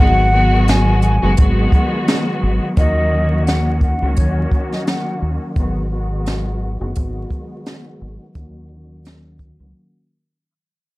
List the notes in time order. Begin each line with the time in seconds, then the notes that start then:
Already playing: D#3 F#5
0.00 G#1 F#3 G#3 B3 F#4
0.32 D#3 F#3 G#3 B3 F#4
0.68 G#5, snare, closed hi-hat
1.02 G#5, closed hi-hat
1.22 F#1 D#3 F#3 G#3 B3 F#4
1.36 G#1 D#3 F#3 G#3 B3 F#4, kick, closed hi-hat
1.72 F#5, kick, closed hi-hat
2.08 snare, closed hi-hat
2.43 G#1
2.77 D#2 D#3 F#3 A#3 C#4 F#4 D#5, kick, closed hi-hat
3.46 F#5, snare, closed hi-hat
3.81 F#5, kick, closed hi-hat
4.02 C#2 D#3 F#3 A#3 C#4 F#4
4.16 D#2 C#5, kick, closed hi-hat
4.51 kick, closed hi-hat
4.71 D#5, snare
4.87 F#5, snare, closed hi-hat
5.22 D#2
5.56 G#1 D#3 F#3 G#3 B3 F#4, kick, closed hi-hat
5.90 D#3 F#3 G#3 B3 F#4
6.26 snare, closed hi-hat
6.80 F#1 D#3 F#3 G#3 B3 F#4
6.95 G#1 D#3 F#3 G#3 B3 F#4, kick, closed hi-hat
7.30 kick, closed hi-hat
7.66 snare, closed hi-hat
8.01 G#1
8.35 D#2 D#3 F#3 A#3 C#4 F#4, kick, closed hi-hat
9.05 snare, closed hi-hat
9.39 kick, closed hi-hat
9.60 C#2 D#3 F#3 A#3 C#4 F#4